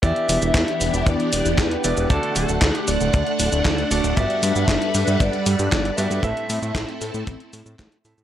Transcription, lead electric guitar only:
0.03 E5
0.55 E5
1.07 D5
1.58 B4
2.10 A4
2.36 A4
2.78 G4
2.88 D5
3.91 D5
4.17 E5
4.68 E5
5.20 D5
5.72 D5
5.98 E5

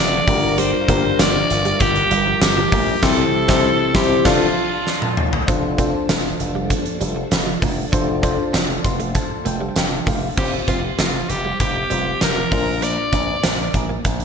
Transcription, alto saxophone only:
Already playing: D5
0.58 C5
1.20 D5
1.81 G4
2.42 G4
3.04 A4
3.95 G4
4.26 F4
10.38 G4
10.68 F4
10.99 F4
11.30 G4
11.61 G4
12.22 A#4
12.83 D5

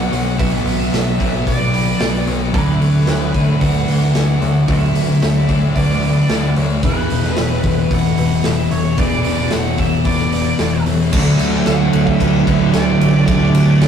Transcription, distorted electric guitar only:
Already playing: B2 F#3 B3
0.37 B2 F#3 B3
1.18 B2 F#3 B3
1.99 B2 F#3 B3
2.52 D3 A3 D4
3.34 D3 A3 D4
4.14 D3 A3 D4
4.67 D3 A3 D4
5.48 D3 A3 D4
6.29 D3 A3 D4
6.83 E2 B2 E3
7.63 E2 B2 E3
8.43 E2 B2 E3
8.97 E2 B2 E3
9.77 E2 B2 E3
10.59 E2 B2 E3
11.12 D3 A3 D4
11.66 D3 A3 D4
11.93 A3 D4
12.46 A3 D4
12.72 D3 A3 D4
13.26 D3 A3 D4
13.80 D3 A3 D4

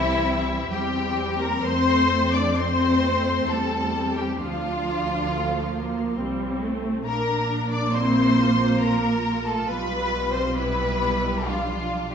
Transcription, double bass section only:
Already playing: C2
0.72 E2
1.65 F2
3.48 E2
4.39 D2
6.18 C2
7.05 A#1
9.68 B1

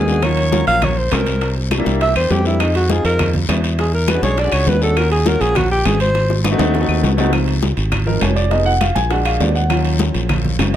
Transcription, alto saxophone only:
Already playing: G#4
0.24 C#5
0.68 F5
0.84 C#5
0.98 C5
1.13 A#4
2.02 E5
2.16 C5
2.31 G4
2.46 E4
2.61 D#4
2.76 F#4
2.91 G#4
3.05 A#4
3.80 G#4
3.94 A#4
4.09 B4
4.24 C#5
4.39 D5
4.54 C#5
4.69 B4
4.83 A4
4.98 A#4
5.12 G#4
5.27 A#4
5.41 G#4
5.57 F#4
5.72 G4
5.87 G#4
6.01 C5

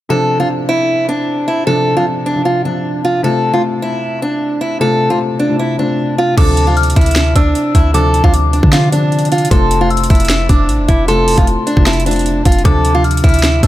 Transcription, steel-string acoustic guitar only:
0.10 A4
0.40 F4
0.69 E4
1.09 D4
1.48 E4
1.67 A4
1.97 F4
2.26 D4
2.45 F4
2.65 D4
3.05 F4
3.24 A4
3.53 F4
3.82 E4
4.22 D4
4.61 E4
4.81 A4
5.10 F4
5.39 D4
5.59 E4
5.79 D4
6.18 F4
6.37 A4
6.67 F4
6.96 E4
7.36 D4
7.75 E4
7.94 A4
8.24 F4
8.53 D4
8.72 F4
8.92 D4
9.32 F4
9.51 A4
9.81 F4
10.10 E4
10.50 D4
10.88 E4
11.08 A4
11.38 F4
11.67 D4
11.87 E4
12.06 D4
12.46 F4
12.65 A4
12.95 F4
13.24 E4
13.63 D4

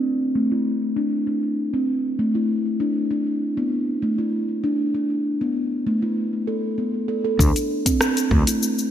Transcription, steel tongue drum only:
0.35 A3
0.52 E4
0.96 D4
1.27 D4
1.74 C4
2.19 A3
2.35 E4
2.80 D4
3.11 D4
3.57 B3
4.02 A3
4.18 E4
4.64 D4
4.95 D4
5.41 B3
5.87 A3
6.02 E4
6.47 A4
6.78 B3
7.08 A4
7.25 A4
7.39 D4
7.86 C4
8.31 A3
8.47 E4

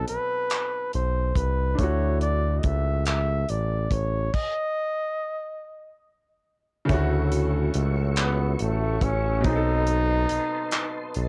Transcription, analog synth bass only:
0.10 B1
0.94 B1
1.36 C2
1.79 D2
2.65 C#2
3.50 A1
3.91 A1
6.90 D2
7.75 C#2
8.61 A1
9.02 A1
9.45 B1
10.31 B1
11.16 B1

